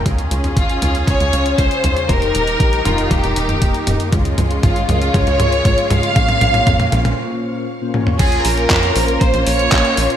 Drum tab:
CC |----------------|----------------|----------------|----------------|
HH |xxxxxxxxxxxxxxxx|xxxxxxxxxxxxxxxx|xxxxxxxxxxxxxxxx|xxxxxxxx--------|
CP |----------------|----------------|----------------|----------------|
T1 |----------------|----------------|----------------|--------------o-|
T2 |o--o--o-o-----o-|o-----o-o--o--o-|o-o-o-o-o-o-o-o-|oooooooo-------o|
BD |o---o---o---o---|o---o---o---o---|o---o---o---o---|o---o-----------|

CC |x---------------|
HH |xxoxxxoxxxoxxxox|
CP |----x-------x---|
T1 |----------------|
T2 |----------------|
BD |o---o---o---o---|